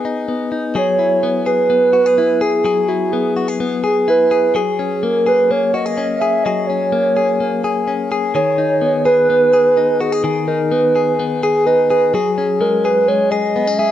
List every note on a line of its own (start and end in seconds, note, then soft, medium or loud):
0.00 0.28 B3 medium
0.00 0.75 G#4 medium
0.05 0.51 D#4 medium
0.28 1.23 B3 medium
0.52 0.80 D#4 soft
0.75 2.64 F#3 medium
0.75 1.46 G#4 medium
0.75 1.43 C#5 loud
0.99 2.17 E4 medium
1.23 1.69 B3 medium
1.46 1.93 G#4 medium
1.46 2.43 B4 loud
1.70 3.12 B3 medium
1.93 2.06 F#4 medium
2.06 2.40 G#4 medium
2.18 2.87 E4 medium
2.41 2.65 G#4 medium
2.41 2.90 G#4 loud
2.64 4.54 F#3 medium
2.64 3.36 G#4 medium
2.88 4.07 E4 medium
2.88 3.13 F#4 medium
3.12 3.59 B3 medium
3.12 3.59 G#4 medium
3.37 3.48 F#4 medium
3.48 3.83 G#4 medium
3.60 4.60 B3 medium
3.84 4.31 G#4 medium
3.84 4.11 G#4 medium
4.08 4.60 E4 medium
4.08 4.32 B4 medium
4.31 4.55 G#4 medium
4.31 4.58 B4 medium
4.55 6.44 F#3 medium
4.55 5.26 G#4 medium
4.55 4.79 G#4 medium
4.79 5.96 C#4 medium
4.79 5.05 G#4 medium
5.03 5.50 A#3 medium
5.03 5.29 A#4 medium
5.26 5.74 G#4 medium
5.26 5.52 B4 medium
5.51 6.91 A#3 medium
5.51 5.76 C#5 medium
5.74 5.86 F#4 medium
5.74 6.22 D#5 loud
5.86 6.20 G#4 medium
5.98 6.68 C#4 medium
6.20 6.46 G#4 medium
6.20 6.45 E5 loud
6.44 8.34 F#3 medium
6.44 7.16 G#4 medium
6.44 6.68 D#5 loud
6.67 7.86 C#4 medium
6.67 8.10 C#5 medium
6.92 7.39 A#3 medium
7.17 7.64 G#4 medium
7.40 8.39 A#3 medium
7.64 8.11 G#4 medium
7.88 8.39 C#4 medium
8.12 8.35 G#4 medium
8.34 10.23 D#3 medium
8.34 9.05 G#4 medium
8.34 9.01 C#5 loud
8.58 9.76 D#4 medium
8.81 9.29 B3 medium
9.05 9.53 G#4 medium
9.05 10.02 B4 loud
9.30 10.70 B3 medium
9.53 10.00 G#4 medium
9.77 10.47 D#4 medium
10.01 10.12 F#4 medium
10.01 10.47 G#4 medium
10.12 10.23 G#4 medium
10.24 12.13 D#3 medium
10.24 10.95 G#4 medium
10.47 11.66 D#4 medium
10.47 10.73 A#4 medium
10.71 11.18 B3 medium
10.71 11.19 B4 medium
10.96 11.43 G#4 medium
11.19 12.19 B3 medium
11.43 11.67 G#4 medium
11.43 11.90 G#4 medium
11.66 12.19 D#4 medium
11.66 11.89 B4 medium
11.90 12.14 G#4 medium
11.90 12.15 B4 medium
12.14 13.91 F#3 medium
12.14 12.37 G#4 medium
12.14 12.85 G#4 medium
12.37 13.55 C#4 medium
12.37 12.62 G#4 medium
12.61 13.08 G#3 medium
12.61 12.83 A#4 medium
12.84 13.31 G#4 medium
12.84 13.09 B4 loud
13.08 13.91 G#3 medium
13.08 13.32 C#5 loud
13.30 13.79 G#4 medium
13.30 13.80 D#5 loud
13.56 13.67 B3 medium
13.67 13.91 C#4 soft
13.79 13.91 G#4 medium
13.79 13.91 E5 loud